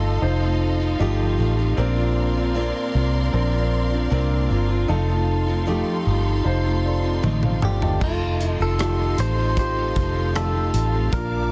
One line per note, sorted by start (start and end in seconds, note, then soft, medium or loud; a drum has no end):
0.00 0.19 G1 medium
0.00 0.41 A3 soft
0.00 0.41 C4 soft
0.00 0.21 D#4 medium
0.00 0.42 D#4 soft
0.00 0.22 F4 medium
0.00 0.39 F4 medium
0.00 0.58 A4 medium
0.00 1.74 A4 medium
0.00 1.79 A4 medium
0.00 1.74 D#5 soft
0.00 7.97 F5 medium
0.00 1.74 C6 medium
0.21 0.96 F1 medium
0.21 0.96 D#4 medium
0.21 0.96 F4 medium
0.21 0.96 C5 medium
0.41 0.82 A3 soft
0.41 0.80 C4 soft
0.41 0.81 D#4 soft
0.41 0.79 F4 soft
0.80 0.99 A3 soft
0.80 1.00 C4 soft
0.80 1.00 D#4 soft
0.80 1.00 F4 soft
0.99 1.36 G1 medium
0.99 1.39 F2 medium
0.99 1.39 F3 medium
0.99 1.37 A3 medium
0.99 1.40 C4 medium
0.99 1.73 D#4 medium
0.99 1.38 D#4 medium
0.99 1.74 F4 medium
0.99 1.40 F4 medium
0.99 1.74 G4 medium
1.38 1.75 A1 medium
1.38 1.58 A3 medium
1.38 1.57 C4 medium
1.38 1.58 D#4 medium
1.38 1.56 F4 medium
1.57 1.78 A3 soft
1.57 1.78 C4 soft
1.57 1.78 D#4 soft
1.57 1.77 F4 soft
1.77 2.71 A#1 medium
1.77 1.97 A#2 medium
1.77 2.91 A#2 medium
1.77 1.97 A#3 medium
1.77 2.51 C4 medium
1.77 1.97 C4 medium
1.77 2.52 D4 medium
1.77 1.98 D4 medium
1.77 1.95 F4 medium
1.77 4.86 A#4 medium
1.77 2.52 A#4 medium
1.77 4.86 D5 medium
1.77 4.86 C6 medium
1.96 2.36 C4 soft
1.96 2.37 D4 soft
1.96 2.34 F4 soft
2.35 2.55 C4 soft
2.35 2.55 D4 soft
2.35 2.55 F4 soft
2.54 2.94 A#2 medium
2.54 2.92 A#3 medium
2.54 3.29 C4 medium
2.54 2.94 C4 medium
2.54 3.29 D4 medium
2.54 2.93 D4 medium
2.54 2.95 F4 medium
2.54 3.30 A#4 medium
2.93 3.31 C2 medium
2.93 3.52 A#3 medium
2.93 3.52 C4 medium
2.93 3.53 D4 medium
2.93 3.50 F4 medium
3.32 4.07 A#1 medium
3.32 4.07 C4 medium
3.32 4.07 D4 medium
3.32 4.08 A#4 medium
3.51 3.91 C4 soft
3.51 3.92 D4 soft
3.51 3.89 F4 soft
3.90 4.11 C4 soft
3.90 4.11 D4 soft
3.90 4.11 F4 soft
4.10 4.48 C2 medium
4.10 4.50 A#2 medium
4.10 4.48 A#3 medium
4.10 4.85 C4 medium
4.10 4.50 C4 medium
4.10 4.85 D4 medium
4.10 4.49 D4 medium
4.10 4.51 F4 medium
4.10 4.86 A#4 medium
4.49 4.87 G1 medium
4.49 4.69 A#3 medium
4.49 4.70 C4 medium
4.49 4.70 D4 medium
4.49 4.67 F4 medium
4.69 4.89 C4 soft
4.69 4.89 D4 soft
4.69 4.89 F4 soft
4.88 5.83 F1 medium
4.88 5.08 F2 medium
4.88 5.08 F3 medium
4.88 5.09 A3 medium
4.88 5.08 C4 medium
4.88 5.63 D#4 medium
4.88 7.98 D#4 soft
4.88 5.09 D#4 medium
4.88 5.63 F4 medium
4.88 5.06 F4 medium
4.88 7.98 A4 medium
4.88 5.63 A4 medium
4.88 7.98 C6 medium
5.08 5.49 A3 soft
5.08 5.47 C4 soft
5.08 5.48 D#4 soft
5.08 5.45 F4 soft
5.46 5.66 A3 soft
5.46 5.67 C4 soft
5.46 5.67 D#4 soft
5.46 5.67 F4 soft
5.66 6.06 F2 medium
5.66 6.06 F3 medium
5.66 6.04 A3 medium
5.66 6.07 C4 medium
5.66 6.41 D#4 medium
5.66 6.05 D#4 medium
5.66 6.41 F4 medium
5.66 6.07 F4 medium
5.66 6.42 G4 medium
6.05 6.43 G1 medium
6.05 6.64 A3 medium
6.05 6.64 C4 medium
6.05 6.65 D#4 medium
6.05 6.62 F4 medium
6.44 7.19 F1 medium
6.44 7.19 D#4 medium
6.44 7.19 F4 medium
6.44 6.85 C5 medium
6.64 7.04 A3 soft
6.64 7.03 C4 soft
6.64 7.04 D#4 soft
6.64 7.01 F4 soft
6.85 7.22 A4 soft
6.85 7.22 D5 soft
7.02 7.22 A3 soft
7.02 7.23 C4 soft
7.02 7.23 D#4 soft
7.02 7.22 F4 soft
7.22 7.60 A1 medium
7.22 7.62 F2 medium
7.22 7.62 F3 medium
7.22 7.60 A3 medium
7.22 7.62 C4 medium
7.22 7.61 D#4 medium
7.22 7.63 F4 medium
7.22 7.43 A4 soft
7.22 7.42 D#5 medium
7.22 high tom soft
7.43 7.61 C5 soft
7.43 7.61 F5 soft
7.43 mid tom soft
7.61 7.98 G1 medium
7.61 7.81 A3 soft
7.61 7.80 C4 medium
7.61 7.81 D#4 medium
7.61 7.79 F4 medium
7.61 7.81 D5 soft
7.61 7.81 G5 soft
7.61 mid tom medium
7.65 8.03 G4 medium
7.80 8.01 A3 soft
7.80 8.01 C4 soft
7.80 8.02 D#4 soft
7.80 8.00 F4 soft
7.80 8.19 D#5 soft
7.80 8.19 A5 soft
7.80 floor tom medium
8.00 8.56 F1 medium
8.00 8.59 F2 medium
8.00 8.59 C3 medium
8.00 8.60 D#3 medium
8.00 8.60 A3 medium
8.00 8.59 C4 medium
8.00 8.75 D#4 medium
8.00 8.75 F4 soft
8.00 8.58 F4 medium
8.00 8.50 F4 medium
8.00 11.09 A4 medium
8.00 8.75 A4 medium
8.00 11.09 D#5 medium
8.00 11.52 F5 medium
8.00 11.09 C6 medium
8.00 kick medium
8.00 crash medium
8.41 closed hi-hat medium
8.50 8.63 D#4 medium
8.59 9.14 F1 medium
8.59 8.78 D#3 soft
8.59 8.78 A3 soft
8.59 8.79 C4 soft
8.59 8.79 F4 soft
8.59 9.20 A4 medium
8.78 9.18 F2 medium
8.78 9.18 C3 medium
8.78 9.16 D#3 medium
8.78 9.17 A3 medium
8.78 9.18 C4 medium
8.78 9.53 D#4 medium
8.78 9.53 F4 medium
8.78 9.19 F4 medium
8.78 9.53 G4 medium
8.78 cross-stick medium
8.78 closed hi-hat medium
9.17 9.92 A1 medium
9.17 9.37 D#3 soft
9.17 9.37 A3 medium
9.17 9.37 C4 medium
9.17 9.58 C5 medium
9.17 cross-stick soft
9.17 closed hi-hat medium
9.37 9.78 D#3 soft
9.37 9.76 A3 soft
9.37 9.75 C4 soft
9.37 9.74 F4 soft
9.56 10.31 D#4 medium
9.56 10.31 F4 medium
9.56 10.31 G4 medium
9.56 10.36 C5 medium
9.56 kick medium
9.56 closed hi-hat medium
9.75 9.94 D#3 soft
9.75 9.95 A3 soft
9.75 9.96 C4 soft
9.75 9.95 F4 soft
9.95 10.70 F1 medium
9.95 10.15 D#3 medium
9.95 10.15 A3 medium
9.95 10.14 C4 medium
9.95 10.13 F4 medium
9.95 kick medium
9.95 closed hi-hat medium
10.14 10.34 D#3 soft
10.14 10.34 A3 soft
10.14 10.35 C4 soft
10.14 10.34 F4 soft
10.34 10.54 F2 medium
10.34 10.54 C3 medium
10.34 10.55 D#3 medium
10.34 10.55 A3 medium
10.34 10.54 C4 medium
10.34 11.09 D#4 medium
10.34 11.09 F4 medium
10.34 10.52 F4 medium
10.34 11.09 G4 medium
10.34 11.13 A4 medium
10.34 cross-stick loud
10.34 closed hi-hat medium
10.53 10.95 D#3 soft
10.53 10.94 A3 soft
10.53 10.93 C4 soft
10.53 10.91 F4 soft
10.74 11.10 A1 medium
10.74 closed hi-hat medium
10.93 11.12 D#3 soft
10.93 11.14 A3 soft
10.93 11.13 C4 soft
10.93 11.12 F4 soft
11.12 11.52 A#1 medium
11.12 11.52 A#2 medium
11.12 11.52 F3 medium
11.12 11.52 A#3 medium
11.12 11.52 D4 medium
11.12 11.52 F4 medium
11.12 11.52 A#4 medium
11.12 11.52 D5 medium
11.12 11.52 A5 medium
11.12 11.52 D6 medium
11.12 kick medium
11.12 closed hi-hat medium